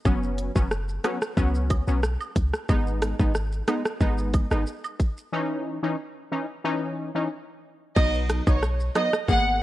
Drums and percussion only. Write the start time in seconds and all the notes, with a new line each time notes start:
0.05 kick, high woodblock, shaker
0.23 shaker
0.38 closed hi-hat, cabasa, shaker
0.56 kick, shaker
0.71 cross-stick, shaker
0.89 shaker
1.04 cross-stick, closed hi-hat, cabasa, high woodblock, shaker
1.22 cross-stick, shaker
1.37 kick, shaker
1.55 shaker
1.70 kick, closed hi-hat, cabasa, high woodblock, shaker
1.87 shaker
2.03 cross-stick, shaker
2.21 high woodblock, shaker
2.36 kick, closed hi-hat, cabasa, shaker
2.53 cross-stick, shaker
2.69 kick, high woodblock, shaker
2.87 shaker
3.02 cross-stick, closed hi-hat, cabasa, shaker
3.19 kick, shaker
3.35 cross-stick, shaker
3.52 shaker
3.68 cross-stick, closed hi-hat, cabasa, high woodblock, shaker
3.85 cross-stick, shaker
4.01 kick, shaker
4.18 shaker
4.34 kick, closed hi-hat, cabasa, high woodblock, shaker
4.51 cross-stick, shaker
4.67 shaker
4.84 high woodblock, shaker
5.00 kick, closed hi-hat, cabasa, shaker
5.17 shaker
7.96 kick, crash, high woodblock, shaker
8.14 shaker
8.29 cross-stick, closed hi-hat, cabasa, shaker
8.47 kick, high woodblock, shaker
8.63 cross-stick, shaker
8.80 shaker
8.95 cross-stick, closed hi-hat, cabasa, high woodblock, shaker
9.13 cross-stick, shaker
9.28 kick, shaker
9.46 shaker